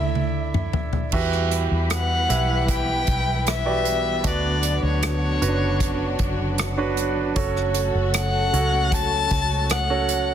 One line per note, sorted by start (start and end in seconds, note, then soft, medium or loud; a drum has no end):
0.00 0.70 D2 medium
0.00 1.14 D3 medium
0.00 1.14 E4 medium
0.00 1.14 A4 medium
0.00 1.15 D5 medium
0.00 0.75 E5 medium
0.00 1.14 E5 medium
0.15 high tom medium
0.54 mid tom medium
0.73 floor tom medium
0.93 floor tom medium
1.12 1.67 E2 medium
1.12 4.22 E3 medium
1.12 2.26 E3 medium
1.12 4.21 G3 medium
1.12 7.32 B3 medium
1.12 4.21 E4 medium
1.12 2.24 F#4 medium
1.12 2.24 G4 medium
1.12 4.21 B4 medium
1.12 2.24 B4 medium
1.12 2.24 E5 medium
1.12 kick medium
1.12 crash medium
1.32 cross-stick soft
1.51 closed hi-hat medium
1.71 2.26 E2 medium
1.90 2.65 F#5 medium
1.90 cross-stick medium
1.90 closed hi-hat medium
2.29 3.04 B1 medium
2.29 3.59 E4 medium
2.29 3.59 G4 medium
2.29 3.60 B4 medium
2.29 3.60 E5 medium
2.29 closed hi-hat medium
2.68 3.44 G5 medium
2.68 kick medium
2.68 closed hi-hat medium
3.07 4.21 B1 medium
3.07 kick medium
3.07 closed hi-hat soft
3.47 4.29 E5 medium
3.47 cross-stick loud
3.47 closed hi-hat medium
3.66 4.21 F#4 medium
3.66 4.22 G4 medium
3.66 4.22 B4 medium
3.66 4.22 D5 medium
3.85 closed hi-hat medium
4.24 4.79 D2 medium
4.24 5.37 D3 medium
4.24 7.33 D3 medium
4.24 10.34 F#3 medium
4.24 5.35 D4 medium
4.24 7.33 D4 medium
4.24 7.33 F#4 medium
4.24 5.35 F#4 medium
4.24 5.36 B4 medium
4.24 4.85 D5 medium
4.24 kick medium
4.24 closed hi-hat medium
4.63 closed hi-hat medium
4.83 5.38 D2 medium
4.83 6.36 C#5 medium
5.03 cross-stick loud
5.03 closed hi-hat medium
5.42 6.16 F#1 medium
5.42 5.48 C#4 medium
5.42 6.71 F#4 medium
5.42 6.71 B4 medium
5.42 6.72 C#5 medium
5.42 closed hi-hat medium
5.48 6.74 D4 medium
5.80 kick medium
5.80 closed hi-hat medium
6.19 7.32 F#1 medium
6.19 kick medium
6.19 closed hi-hat soft
6.58 cross-stick medium
6.58 closed hi-hat medium
6.77 7.33 D4 medium
6.77 7.34 F#4 medium
6.77 7.34 B4 medium
6.77 7.34 C#5 medium
6.97 closed hi-hat medium
7.35 7.91 F#1 medium
7.35 10.34 C#3 medium
7.35 10.34 A3 medium
7.35 8.47 C#4 medium
7.35 10.34 F#4 medium
7.35 8.47 F#4 medium
7.35 10.34 A4 medium
7.35 8.48 A4 medium
7.35 8.48 C#5 medium
7.35 kick medium
7.35 closed hi-hat medium
7.57 cross-stick soft
7.74 closed hi-hat medium
7.95 8.49 F#1 medium
8.14 8.95 F#5 medium
8.14 cross-stick loud
8.14 closed hi-hat medium
8.53 9.27 C#2 medium
8.53 9.83 C#4 medium
8.53 9.83 F#4 medium
8.53 9.83 A4 medium
8.53 9.83 C#5 medium
8.53 closed hi-hat medium
8.92 9.73 A5 loud
8.92 kick medium
8.92 closed hi-hat medium
9.30 10.34 C#2 medium
9.30 kick medium
9.30 closed hi-hat soft
9.70 10.34 F#5 medium
9.70 cross-stick loud
9.70 closed hi-hat medium
9.90 10.34 C#4 medium
9.90 10.34 F#4 medium
9.90 10.34 A4 medium
9.90 10.34 C#5 medium
10.09 closed hi-hat medium